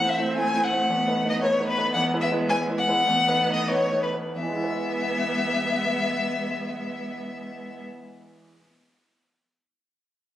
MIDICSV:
0, 0, Header, 1, 5, 480
1, 0, Start_track
1, 0, Key_signature, 4, "major"
1, 0, Tempo, 535714
1, 802, Time_signature, 2, 2, 24, 8
1, 2239, Tempo, 597015
1, 3199, Tempo, 672646
1, 7954, End_track
2, 0, Start_track
2, 0, Title_t, "Violin"
2, 0, Program_c, 0, 40
2, 0, Note_on_c, 0, 78, 106
2, 83, Note_on_c, 0, 76, 93
2, 96, Note_off_c, 0, 78, 0
2, 325, Note_off_c, 0, 76, 0
2, 330, Note_on_c, 0, 80, 108
2, 572, Note_on_c, 0, 78, 98
2, 586, Note_off_c, 0, 80, 0
2, 1156, Note_off_c, 0, 78, 0
2, 1161, Note_on_c, 0, 75, 100
2, 1207, Note_off_c, 0, 75, 0
2, 1266, Note_on_c, 0, 73, 111
2, 1497, Note_off_c, 0, 73, 0
2, 1503, Note_on_c, 0, 71, 123
2, 1731, Note_off_c, 0, 71, 0
2, 1736, Note_on_c, 0, 78, 127
2, 1808, Note_off_c, 0, 78, 0
2, 1982, Note_on_c, 0, 76, 119
2, 2054, Note_off_c, 0, 76, 0
2, 2234, Note_on_c, 0, 80, 125
2, 2299, Note_off_c, 0, 80, 0
2, 2467, Note_on_c, 0, 78, 127
2, 3058, Note_off_c, 0, 78, 0
2, 3069, Note_on_c, 0, 75, 100
2, 3198, Note_on_c, 0, 73, 106
2, 3209, Note_off_c, 0, 75, 0
2, 3434, Note_off_c, 0, 73, 0
2, 3439, Note_on_c, 0, 71, 87
2, 3496, Note_off_c, 0, 71, 0
2, 3673, Note_on_c, 0, 76, 109
2, 6140, Note_off_c, 0, 76, 0
2, 7954, End_track
3, 0, Start_track
3, 0, Title_t, "Grand piano"
3, 0, Program_c, 1, 0
3, 0, Note_on_c, 1, 57, 59
3, 0, Note_on_c, 1, 64, 58
3, 6, Note_on_c, 1, 72, 62
3, 26, Control_c, 1, 64, 127
3, 144, Note_off_c, 1, 57, 0
3, 146, Note_off_c, 1, 64, 0
3, 149, Note_off_c, 1, 72, 0
3, 164, Note_on_c, 1, 57, 56
3, 167, Note_on_c, 1, 64, 55
3, 171, Note_on_c, 1, 72, 58
3, 306, Note_off_c, 1, 57, 0
3, 311, Note_off_c, 1, 64, 0
3, 313, Note_off_c, 1, 72, 0
3, 320, Note_on_c, 1, 57, 60
3, 325, Note_on_c, 1, 64, 61
3, 330, Note_on_c, 1, 72, 68
3, 466, Note_off_c, 1, 57, 0
3, 469, Note_off_c, 1, 64, 0
3, 472, Note_off_c, 1, 72, 0
3, 480, Note_on_c, 1, 57, 58
3, 485, Note_on_c, 1, 64, 59
3, 490, Note_on_c, 1, 72, 62
3, 623, Note_off_c, 1, 57, 0
3, 628, Note_off_c, 1, 64, 0
3, 630, Note_off_c, 1, 72, 0
3, 637, Note_on_c, 1, 57, 63
3, 643, Note_on_c, 1, 64, 59
3, 643, Note_on_c, 1, 72, 63
3, 782, Note_off_c, 1, 57, 0
3, 785, Note_off_c, 1, 64, 0
3, 785, Note_off_c, 1, 72, 0
3, 800, Note_on_c, 1, 40, 84
3, 819, Control_c, 1, 64, 0
3, 953, Note_off_c, 1, 40, 0
3, 961, Note_on_c, 1, 57, 67
3, 964, Note_on_c, 1, 63, 67
3, 967, Note_on_c, 1, 71, 70
3, 971, Control_c, 1, 64, 127
3, 1098, Note_off_c, 1, 57, 0
3, 1103, Note_off_c, 1, 63, 0
3, 1105, Note_off_c, 1, 71, 0
3, 1112, Note_on_c, 1, 57, 64
3, 1118, Note_on_c, 1, 63, 61
3, 1123, Note_on_c, 1, 71, 65
3, 1255, Note_off_c, 1, 57, 0
3, 1259, Note_off_c, 1, 63, 0
3, 1262, Note_off_c, 1, 71, 0
3, 1272, Note_on_c, 1, 57, 71
3, 1278, Note_on_c, 1, 63, 66
3, 1283, Note_on_c, 1, 71, 75
3, 1414, Note_off_c, 1, 57, 0
3, 1417, Note_off_c, 1, 63, 0
3, 1421, Note_off_c, 1, 71, 0
3, 1430, Note_on_c, 1, 57, 71
3, 1430, Note_on_c, 1, 63, 67
3, 1438, Note_on_c, 1, 71, 76
3, 1573, Note_off_c, 1, 57, 0
3, 1573, Note_off_c, 1, 63, 0
3, 1577, Note_off_c, 1, 71, 0
3, 1592, Note_on_c, 1, 57, 74
3, 1594, Note_on_c, 1, 63, 75
3, 1597, Note_on_c, 1, 71, 81
3, 1734, Note_off_c, 1, 57, 0
3, 1736, Note_off_c, 1, 63, 0
3, 1737, Note_off_c, 1, 71, 0
3, 1749, Note_on_c, 1, 40, 104
3, 1768, Control_c, 1, 64, 0
3, 1905, Note_off_c, 1, 40, 0
3, 1912, Note_on_c, 1, 56, 72
3, 1913, Note_on_c, 1, 64, 76
3, 1918, Note_on_c, 1, 71, 84
3, 1931, Control_c, 1, 64, 127
3, 2058, Note_off_c, 1, 56, 0
3, 2058, Note_off_c, 1, 64, 0
3, 2061, Note_off_c, 1, 71, 0
3, 2071, Note_on_c, 1, 56, 70
3, 2076, Note_on_c, 1, 64, 74
3, 2077, Note_on_c, 1, 71, 75
3, 2222, Note_off_c, 1, 56, 0
3, 2224, Note_off_c, 1, 64, 0
3, 2225, Note_off_c, 1, 71, 0
3, 2239, Note_on_c, 1, 56, 75
3, 2243, Note_on_c, 1, 64, 77
3, 2248, Note_on_c, 1, 71, 81
3, 2376, Note_off_c, 1, 56, 0
3, 2378, Note_off_c, 1, 64, 0
3, 2381, Note_off_c, 1, 71, 0
3, 2394, Note_on_c, 1, 56, 74
3, 2397, Note_on_c, 1, 64, 69
3, 2400, Note_on_c, 1, 71, 77
3, 2532, Note_off_c, 1, 56, 0
3, 2534, Note_off_c, 1, 64, 0
3, 2535, Note_off_c, 1, 71, 0
3, 2548, Note_on_c, 1, 56, 78
3, 2552, Note_on_c, 1, 64, 77
3, 2553, Note_on_c, 1, 71, 80
3, 2688, Note_off_c, 1, 56, 0
3, 2690, Note_off_c, 1, 64, 0
3, 2691, Note_off_c, 1, 71, 0
3, 2698, Note_on_c, 1, 40, 100
3, 2719, Control_c, 1, 64, 0
3, 2844, Control_c, 1, 64, 127
3, 2856, Note_off_c, 1, 40, 0
3, 2862, Note_on_c, 1, 57, 69
3, 2869, Note_on_c, 1, 63, 69
3, 2870, Note_on_c, 1, 71, 79
3, 3012, Note_off_c, 1, 57, 0
3, 3015, Note_off_c, 1, 63, 0
3, 3016, Note_off_c, 1, 71, 0
3, 3030, Note_on_c, 1, 57, 65
3, 3033, Note_on_c, 1, 63, 63
3, 3034, Note_on_c, 1, 71, 69
3, 3181, Note_off_c, 1, 57, 0
3, 3184, Note_off_c, 1, 63, 0
3, 3185, Note_off_c, 1, 71, 0
3, 3193, Note_on_c, 1, 57, 66
3, 3200, Note_on_c, 1, 63, 65
3, 3201, Note_on_c, 1, 71, 71
3, 3336, Note_off_c, 1, 57, 0
3, 3340, Note_off_c, 1, 63, 0
3, 3340, Note_off_c, 1, 71, 0
3, 3355, Note_on_c, 1, 57, 59
3, 3358, Note_on_c, 1, 63, 60
3, 3360, Note_on_c, 1, 71, 67
3, 3500, Note_off_c, 1, 57, 0
3, 3501, Note_off_c, 1, 63, 0
3, 3502, Note_off_c, 1, 71, 0
3, 3512, Note_on_c, 1, 57, 53
3, 3516, Note_on_c, 1, 63, 57
3, 3519, Note_on_c, 1, 71, 64
3, 3657, Note_off_c, 1, 57, 0
3, 3659, Note_off_c, 1, 63, 0
3, 3661, Note_off_c, 1, 71, 0
3, 3671, Note_on_c, 1, 40, 66
3, 3693, Control_c, 1, 64, 0
3, 3723, Note_on_c, 1, 52, 70
3, 3770, Note_on_c, 1, 56, 66
3, 3819, Note_on_c, 1, 64, 67
3, 3845, Control_c, 1, 64, 127
3, 3870, Note_on_c, 1, 71, 64
3, 3921, Note_on_c, 1, 76, 65
3, 6094, Control_c, 1, 64, 0
3, 6639, Note_off_c, 1, 40, 0
3, 6665, Note_off_c, 1, 52, 0
3, 6688, Note_off_c, 1, 56, 0
3, 6713, Note_off_c, 1, 64, 0
3, 6739, Note_off_c, 1, 71, 0
3, 6764, Note_off_c, 1, 76, 0
3, 7954, End_track
4, 0, Start_track
4, 0, Title_t, "Viola"
4, 0, Program_c, 2, 41
4, 0, Note_on_c, 2, 60, 79
4, 802, Note_on_c, 2, 59, 85
4, 815, Note_off_c, 2, 60, 0
4, 2703, Note_off_c, 2, 59, 0
4, 2710, Note_on_c, 2, 59, 101
4, 3486, Note_off_c, 2, 59, 0
4, 3678, Note_on_c, 2, 59, 88
4, 6143, Note_off_c, 2, 59, 0
4, 7954, End_track
5, 0, Start_track
5, 0, Title_t, "Cello"
5, 0, Program_c, 3, 42
5, 0, Note_on_c, 3, 57, 78
5, 1712, Note_off_c, 3, 57, 0
5, 1748, Note_on_c, 3, 56, 99
5, 2710, Note_on_c, 3, 57, 89
5, 2722, Note_off_c, 3, 56, 0
5, 3501, Note_off_c, 3, 57, 0
5, 3674, Note_on_c, 3, 56, 78
5, 6141, Note_off_c, 3, 56, 0
5, 7954, End_track
0, 0, End_of_file